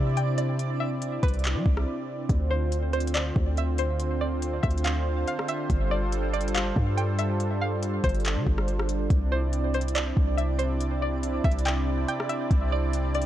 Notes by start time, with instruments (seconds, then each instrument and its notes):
Already playing: 808-style bass C3, analog synth pad C3 C4 D4 E4 D5, synth texture C4 E4 D5, synth pluck E5
0.17 synth pluck G5, closed hi-hat
0.38 synth pluck D5, closed hi-hat
0.59 closed hi-hat
0.80 synth pluck E5
1.02 closed hi-hat
1.23 808-style bass C2, synth pluck B4, kick, closed hi-hat
1.28 closed hi-hat
1.34 closed hi-hat
1.39 closed hi-hat
1.44 clap, closed hi-hat
1.55 808-style bass G3
1.66 808-style bass C2, kick
1.77 cross-stick
2.29 808-style bass D2, analog synth pad D3 C4 D4 F4 C5, kick, closed hi-hat
2.51 synth pluck C5
2.72 closed hi-hat
2.93 synth pluck C5, closed hi-hat
3.00 closed hi-hat
3.07 closed hi-hat
3.14 synth pluck D5, clap, closed hi-hat
3.36 808-style bass D2, kick
3.57 synth pluck E5, closed hi-hat
3.78 synth pluck C5, closed hi-hat
4.00 closed hi-hat
4.21 synth pluck D5
4.42 closed hi-hat
4.63 808-style bass D2, synth pluck E5, kick, closed hi-hat
4.71 closed hi-hat
4.78 closed hi-hat
4.84 synth pluck F5, clap, closed hi-hat
5.28 synth pluck F5, closed hi-hat
5.39 cross-stick
5.48 synth pluck E5, closed hi-hat
5.70 808-style bass G1, analog synth pad G3 A4, kick, closed hi-hat
5.91 synth pluck D5
6.12 closed hi-hat
6.33 synth pluck D5, closed hi-hat
6.41 closed hi-hat
6.48 closed hi-hat
6.55 synth pluck F5, clap, closed hi-hat
6.76 808-style bass G2, kick
6.97 synth pluck G5, closed hi-hat
7.19 synth pluck E5, closed hi-hat
7.40 closed hi-hat
7.61 synth pluck F5
7.83 closed hi-hat
8.04 808-style bass G1, synth pluck C5, kick, closed hi-hat
8.09 closed hi-hat
8.14 closed hi-hat
8.20 closed hi-hat
8.25 clap, closed hi-hat
8.36 808-style bass D3
8.47 808-style bass G1, kick
8.58 cross-stick
8.68 closed hi-hat
8.79 cross-stick
8.89 closed hi-hat
9.10 808-style bass C2, analog synth pad C3 C4 E4 D5, synth texture C4 E4 D5, kick, closed hi-hat
9.32 synth pluck C5
9.53 closed hi-hat
9.74 synth pluck C5, closed hi-hat
9.81 closed hi-hat
9.88 closed hi-hat
9.95 synth pluck D5, clap, closed hi-hat
10.17 808-style bass C2, kick
10.37 synth pluck E5, closed hi-hat
10.59 synth pluck C5, closed hi-hat
10.81 closed hi-hat
11.02 synth pluck D5
11.23 closed hi-hat
11.44 808-style bass C2, synth pluck E5, kick, closed hi-hat
11.51 closed hi-hat
11.59 closed hi-hat
11.65 synth pluck G5, clap, closed hi-hat
12.08 synth pluck G5, closed hi-hat
12.20 cross-stick
12.29 synth pluck E5, closed hi-hat
12.51 808-style bass C2, synth texture E5, kick, closed hi-hat
12.72 synth pluck D5
12.93 closed hi-hat
13.15 synth pluck D5, closed hi-hat
13.22 closed hi-hat